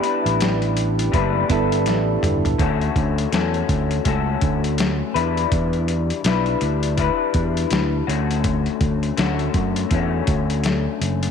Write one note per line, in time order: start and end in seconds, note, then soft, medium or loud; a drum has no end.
0.00 1.49 B3 medium
0.00 1.50 D4 medium
0.00 1.51 E4 medium
0.00 1.13 E4 soft
0.00 2.61 G4 medium
0.00 1.13 B4 medium
0.00 closed hi-hat medium
0.05 1.12 G3 soft
0.05 1.13 D4 soft
0.26 1.09 A1 medium
0.26 closed hi-hat soft
0.41 snare loud
0.41 closed hi-hat medium
0.62 closed hi-hat soft
0.77 closed hi-hat medium
0.99 closed hi-hat medium
1.12 1.43 F#1 medium
1.12 1.49 A2 medium
1.12 1.49 D3 medium
1.12 1.49 G3 medium
1.12 1.50 D4 medium
1.12 1.49 E4 medium
1.12 1.47 B4 loud
1.12 kick medium
1.12 closed hi-hat medium
1.49 1.87 G1 medium
1.49 2.59 G3 soft
1.49 2.46 B3 medium
1.49 2.47 D4 medium
1.49 2.59 D4 soft
1.49 2.59 E4 soft
1.49 2.47 E4 medium
1.49 2.47 A4 medium
1.49 2.59 B4 soft
1.49 kick medium
1.49 closed hi-hat medium
1.72 closed hi-hat soft
1.86 2.16 A1 medium
1.86 snare medium
1.86 closed hi-hat medium
2.23 2.52 G1 medium
2.23 closed hi-hat medium
2.23 mid tom medium
2.45 closed hi-hat soft
2.45 floor tom medium
2.59 2.89 D2 medium
2.59 3.36 D3 medium
2.59 3.30 A3 medium
2.59 3.32 C#4 medium
2.59 3.33 F#4 medium
2.59 3.33 A4 medium
2.59 kick loud
2.59 closed hi-hat medium
2.81 closed hi-hat soft
2.96 3.25 D2 medium
2.96 kick medium
2.96 closed hi-hat medium
3.18 closed hi-hat soft
3.32 3.62 E2 medium
3.32 4.03 A3 medium
3.32 4.05 C#4 medium
3.32 4.06 F#4 medium
3.32 4.07 A4 medium
3.32 snare loud
3.32 closed hi-hat medium
3.54 closed hi-hat soft
3.69 3.98 D2 medium
3.69 kick medium
3.69 closed hi-hat medium
3.91 closed hi-hat medium
4.05 4.35 C#2 medium
4.05 5.15 A3 medium
4.05 5.16 C#4 medium
4.05 5.15 F#4 medium
4.05 5.14 A4 medium
4.05 kick medium
4.05 closed hi-hat medium
4.41 5.01 D2 medium
4.41 kick medium
4.41 closed hi-hat medium
4.64 closed hi-hat medium
4.78 snare loud
4.78 closed hi-hat medium
5.14 5.45 E2 medium
5.14 6.26 E3 medium
5.14 6.23 G3 medium
5.14 6.26 D4 medium
5.14 6.25 E4 medium
5.14 6.25 B4 medium
5.14 closed hi-hat medium
5.37 closed hi-hat soft
5.52 6.11 E2 medium
5.52 kick loud
5.52 closed hi-hat medium
5.73 closed hi-hat soft
5.88 closed hi-hat medium
6.10 closed hi-hat soft
6.24 6.54 B1 medium
6.24 6.96 G3 medium
6.24 6.98 D4 medium
6.24 6.98 E4 medium
6.24 7.00 B4 medium
6.24 snare loud
6.24 closed hi-hat medium
6.46 closed hi-hat soft
6.61 7.09 D2 medium
6.61 closed hi-hat medium
6.83 closed hi-hat medium
6.97 8.08 G3 medium
6.97 8.08 D4 medium
6.97 8.07 E4 medium
6.97 8.09 B4 medium
6.97 kick medium
6.97 closed hi-hat medium
7.34 7.64 E2 medium
7.34 kick medium
7.34 closed hi-hat medium
7.57 closed hi-hat medium
7.71 8.01 D2 medium
7.71 snare loud
7.71 closed hi-hat medium
8.07 8.67 D2 medium
8.07 9.16 D3 medium
8.07 9.17 A3 medium
8.07 9.18 C#4 medium
8.07 9.20 F#4 medium
8.07 closed hi-hat medium
8.31 closed hi-hat soft
8.44 kick loud
8.44 closed hi-hat medium
8.66 closed hi-hat soft
8.81 9.10 D2 loud
8.81 kick medium
8.81 closed hi-hat medium
9.03 closed hi-hat soft
9.17 9.47 D2 loud
9.17 9.89 D3 medium
9.17 9.91 A3 medium
9.17 9.91 C#4 medium
9.17 9.96 F#4 medium
9.17 snare loud
9.17 closed hi-hat medium
9.39 closed hi-hat soft
9.54 9.84 F#2 medium
9.54 kick medium
9.54 closed hi-hat medium
9.76 closed hi-hat medium
9.89 10.20 E2 medium
9.89 11.31 D3 medium
9.89 11.31 A3 medium
9.89 kick medium
9.89 closed hi-hat medium
9.94 11.31 C#4 medium
9.94 11.31 F#4 medium
10.27 10.86 D2 medium
10.27 kick medium
10.27 closed hi-hat medium
10.50 closed hi-hat medium
10.64 snare loud
10.64 closed hi-hat medium
11.01 11.30 F#1 medium
11.01 closed hi-hat medium
11.23 closed hi-hat soft